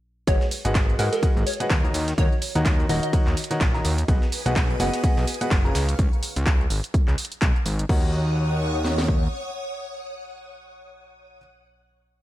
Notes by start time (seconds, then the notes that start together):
0.27 G#1 G#3 F#4 G#4 B4 C#5 D#5 F#5, kick, closed hi-hat, ride, shaker
0.41 snare, shaker
0.51 open hi-hat, ride, shaker
0.65 G#1 G#3 F#4 G#4 B4 D#5 F#5, closed hi-hat, shaker
0.75 kick, snare, clap, closed hi-hat, ride, shaker
0.89 shaker
0.99 G#2 G#3 F#4 G#4 A#4 B4 D#5 F#5, open hi-hat, ride, shaker
1.12 A#4, snare, closed hi-hat, shaker
1.23 G#3 F#4 G#4 B4 D#5 F#5, kick, closed hi-hat, ride, shaker
1.36 G#1, shaker
1.46 C#5, open hi-hat, ride, shaker
1.53 closed hi-hat
1.60 G#3 F#4 G#4 B4 D#5 F#5, closed hi-hat, shaker
1.70 D#2, kick, snare, clap, closed hi-hat, ride, shaker
1.84 D#3 F#4 A#4 C#5 D#5 A#5, shaker
1.94 D#2, snare, open hi-hat, ride, shaker
2.08 snare, closed hi-hat, shaker
2.18 D#2 D#3 F#4 A#4 C#5 D#5 F#5, kick, closed hi-hat, ride, shaker
2.32 shaker
2.42 open hi-hat, ride, shaker
2.55 D#2 D#3 F#4 A#4 C#5 D#5 F#5, closed hi-hat, ride, shaker
2.66 kick, snare, clap, closed hi-hat, ride, shaker
2.80 shaker
2.89 D#1 D#3 F#4 A#4 C#5 D#5 F#5, open hi-hat, shaker
3.03 D#5, closed hi-hat, shaker
3.13 D#3 F#4 A#4 C#5 D#5 F#5, kick, closed hi-hat, ride, shaker
3.27 D#2, snare, clap, shaker
3.37 open hi-hat, ride, shaker
3.44 closed hi-hat
3.51 D#3 F#4 A#4 C#5 D#5 F#5, snare, closed hi-hat, shaker
3.61 A#1, kick, snare, clap, closed hi-hat, ride, shaker
3.74 D#3 F#4 A#4 C#5 D#5 A#5, snare, shaker
3.85 D#2, open hi-hat, ride, shaker
3.98 closed hi-hat, ride, shaker
4.08 B1 B3 F#4 G#4 B4 D#5 F#5 G#5 D#6, kick, closed hi-hat, ride, shaker
4.22 snare, shaker
4.32 open hi-hat, ride, shaker
4.46 B1 B3 F#4 G#4 B4 D#5 F#5, closed hi-hat, shaker
4.56 kick, snare, clap, closed hi-hat, ride, shaker
4.70 shaker
4.80 F#1 B3 F#4 G#4 B4 D#5 F#5, open hi-hat, ride, shaker
4.93 snare, closed hi-hat, shaker
5.04 B3 F#4 G#4 B4 D#5 F#5, kick, closed hi-hat, ride, shaker
5.17 B1, snare, shaker
5.27 open hi-hat, ride, shaker
5.34 closed hi-hat
5.41 B3 F#4 G#4 B4 D#5 F#5, closed hi-hat, shaker
5.51 F#1, kick, snare, clap, closed hi-hat, ride, shaker
5.65 C#3 F4 G#4 B4 C#5 A#5, shaker
5.75 C#2 F5 C#6, snare, open hi-hat, ride, shaker
5.89 closed hi-hat, shaker
5.99 C#2, kick, closed hi-hat, shaker
6.13 shaker
6.23 open hi-hat, shaker
6.36 C#2, closed hi-hat, shaker
6.46 kick, clap, closed hi-hat, shaker
6.61 shaker
6.70 G#1, open hi-hat, shaker
6.84 closed hi-hat, shaker
6.94 kick, closed hi-hat, shaker
7.08 C#2, clap, shaker
7.18 open hi-hat, shaker
7.25 closed hi-hat
7.32 closed hi-hat, shaker
7.42 B1, kick, clap, closed hi-hat, shaker
7.56 shaker
7.66 G#1, open hi-hat, shaker
7.79 closed hi-hat, shaker
7.89 D#2 F#4 A#4 C#5 D#5 F#5 D#6, kick, crash
8.85 snare
8.98 snare
9.08 kick